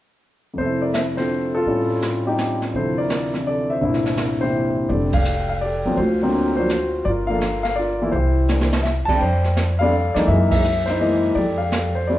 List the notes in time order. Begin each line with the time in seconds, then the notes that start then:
0.54 F2 C3
0.58 A3 A4 C5, brush sweep, kick
0.64 E4
0.82 A#4 D5
0.94 C5 E5, snare, hi-hat pedal
1.17 D3 C4 F4 A4 C5, snare
1.55 F4 A4
1.66 A2 G3 C4 C#4 F4, brush sweep, kick
2.02 snare, hi-hat pedal
2.26 G3 A3 C4 D#4 G4
2.38 snare, hi-hat pedal
2.62 snare
2.74 D2 C3 F3 E4 A4 C5, brush sweep, kick
2.98 A#4 D5
3.10 snare, hi-hat pedal
3.33 C3 E3 D4, snare
3.47 A4 D5
3.70 C5 E5
3.81 C2 G2 A#2 D3 A3 E4, brush sweep, kick
3.94 snare
4.06 snare
4.17 snare, hi-hat pedal
4.40 C3 E3 A#3 C4 E4 G4 C5
4.89 F1 D3 G3 A3 C4 G4 A4 D5, brush sweep, kick
5.13 A4 F5, kick, ride
5.17 D5
5.25 hi-hat pedal
5.49 F5
5.61 G4 A4 D5
5.86 C#2 F3 F#3 A#3 C4
5.97 D2 F4 F#4 C5, brush sweep, kick
6.22 D3 F#3 A#3 C4
6.56 F3 F#3 A#3 D4 F4 F#4 C5
6.70 snare, hi-hat pedal
7.05 G1 F4 A#4 D5, brush sweep, kick
7.27 F3 A3 A#3 D4 A4 A#4 F5
7.41 snare, hi-hat pedal
7.63 F5, snare
7.76 F4 D5
7.80 A#4
8.01 E3 A3 A#3 E4
8.12 C2 C5, brush sweep, kick
8.16 E4 G4
8.49 E3 A3 A#3 D4, snare, hi-hat pedal
8.61 snare
8.73 snare
8.83 E5, snare
9.05 G3 A3 A5, muted upright bass stroke, kick, crash
9.10 C4 D4
9.18 F2 C5 G5, brush sweep, kick
9.22 D5
9.44 snare
9.56 snare, hi-hat pedal
9.79 G3 A3 C4 D4 F5
9.83 A4 D5
10.14 F2 E3 G#3 A#3 D#4 D5, snare
10.28 F#2 A#4 E5, brush sweep, kick
10.32 G#4
10.51 A#4 E5, kick, ride
10.55 G#4
10.64 hi-hat pedal
10.86 E4 C5, snare
10.90 D#4
11.00 E3 G#3 A#3 D#5
11.35 F2 G4 A4 D5, brush sweep, kick
11.58 A4 D5 F5
11.72 snare, hi-hat pedal
11.95 C5
12.07 G3 A3 C4 D4 G4 A4 D5